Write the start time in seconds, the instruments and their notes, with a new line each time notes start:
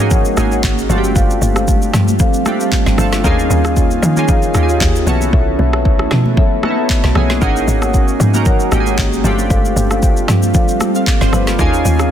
Already playing: log drum bass G#2, ambient pad G#3 C#4 F#4
0.00 synth keys A#3 C#4 D#4 F#4 G#4
0.11 marimba A#4 C#5 F#5, kick, low conga, shaker
0.25 shaker
0.37 log drum bass G#1, synth keys A#3 C#4 D#4 F#4 G#4, cross-stick, high conga, shaker
0.52 marimba A#4 C#5 F#5, shaker
0.64 log drum bass G#1, kick, clap, high conga, shaker
0.78 shaker
0.89 log drum bass G1, ambient pad G3 C4 F4, synth keys A3 C4 D4 F4 F#4, marimba A4 C5 F5, high conga, low conga, shaker
0.98 synth keys G4
1.04 high conga, shaker
1.15 log drum bass G1, marimba A4 C5 F5, kick, shaker
1.30 shaker
1.42 log drum bass G1, high conga, shaker
1.56 marimba A4 C5 F5, cross-stick, shaker
1.68 kick, shaker
1.82 shaker
1.94 log drum bass G2, cross-stick, snare, low conga, shaker
2.08 high conga, shaker
2.19 marimba A4 C5 F5, kick, low conga, shaker
2.34 shaker
2.46 synth keys A3 C4 D4 F4 G4, cross-stick, high conga, shaker
2.60 marimba A4 C5 F5, shaker
2.72 kick, clap, high conga, shaker
2.86 log drum bass G1, snare, shaker
2.98 log drum bass G1, synth keys A3 C4 D4 F4 A4, marimba A4 C5 F5, cross-stick, high conga, low conga, shaker
3.13 snare, high conga, shaker
3.24 log drum bass D#2, ambient pad D#3 C#4 G#4, synth keys A#3 C#4 D#4 F4 G#4, marimba G#4 C#5 F5, kick, shaker
3.39 shaker
3.50 log drum bass D#2, high conga, shaker
3.64 marimba G#4 C#5 F5, cross-stick, shaker
3.77 kick, shaker
3.91 shaker
4.02 log drum bass D#3, low conga, shaker
4.16 synth keys A#3 C#4 D#4 F4 G#4, high conga, shaker
4.28 marimba G#4 C#5 F5, kick, low conga, shaker
4.42 shaker
4.54 log drum bass D#2, synth keys A#3 C#4 D#4 F4 G4, cross-stick, high conga, shaker
4.63 synth keys G#4
4.69 marimba G#4 C#5 F5, shaker
4.81 log drum bass D#2, kick, clap, high conga, shaker
4.96 shaker
5.06 log drum bass B1, ambient pad A3 B3 E4, synth keys B3 C#4 E4 F#4 A4, marimba A4 C#5 E5, high conga, low conga, shaker
5.21 high conga, shaker
5.33 log drum bass B1, marimba A4 C#5 E5, kick
5.59 log drum bass B1, high conga
5.73 marimba A4 C#5 E5, cross-stick
5.85 kick
5.99 cross-stick
6.11 log drum bass B2, cross-stick, snare, low conga
6.26 high conga
6.37 marimba A4 C#5 E5, kick, low conga
6.63 synth keys B3 C#4 D#4 F#4 A4, cross-stick, high conga
6.70 synth keys E4
6.77 marimba A4 C#5 E5
6.90 kick, clap
7.04 log drum bass B1, snare
7.15 log drum bass B1, synth keys B3 C#4 E4 F#4 G#4, marimba A4 C#5 E5, cross-stick, high conga, low conga
7.30 snare, high conga
7.41 log drum bass G#1, ambient pad G#3 C#4 F#4, synth keys A#3 C#4 D#4 F#4 G#4, marimba A#4 C#5 F#5, kick, shaker
7.56 shaker
7.68 log drum bass G#1, high conga, shaker
7.82 marimba A#4 C#5 F#5, cross-stick, shaker
7.94 kick, shaker
8.08 shaker
8.20 log drum bass G#2, low conga, shaker
8.34 synth keys A#3 C#4 D#4 F#4 A#4, high conga, shaker
8.46 marimba A#4 C#5 F#5, kick, low conga, shaker
8.60 shaker
8.72 log drum bass G#1, synth keys A#3 C#4 D#4 F#4 G4, cross-stick, high conga, shaker
8.80 synth keys G#4
8.86 marimba A#4 C#5 F#5, shaker
8.98 log drum bass G#1, kick, clap, high conga, shaker
9.13 shaker
9.24 log drum bass G1, ambient pad G3 C4 F4, synth keys A3 C4 D4 F4 G4, marimba A4 C5 F5, high conga, low conga, shaker
9.39 high conga, shaker
9.50 log drum bass G1, marimba A4 C5 F5, kick, shaker
9.65 shaker
9.76 log drum bass G1, high conga, shaker
9.90 marimba A4 C5 F5, cross-stick, shaker
10.03 kick, shaker
10.17 shaker
10.28 log drum bass G2, cross-stick, snare, low conga, shaker
10.43 high conga, shaker
10.54 marimba A4 C5 F5, kick, low conga, shaker
10.68 shaker
10.81 cross-stick, high conga, shaker
10.95 marimba A4 C5 F5, synth keys F5, shaker
11.07 synth keys D5, kick, clap, high conga, shaker
11.21 log drum bass G1, synth keys C5, snare, shaker
11.33 log drum bass G1, marimba A4 C5 F5, synth keys B4, cross-stick, high conga, low conga, shaker
11.47 synth keys A4, snare, high conga, shaker
11.59 log drum bass D#2, ambient pad D#3 G#3 C#4 F4, synth keys A#3 C#4 D#4 F4 G#4, marimba G#4 C#5 F5, kick, shaker
11.74 shaker
11.85 log drum bass D#2, high conga, shaker
11.99 marimba G#4 C#5 F5, cross-stick, shaker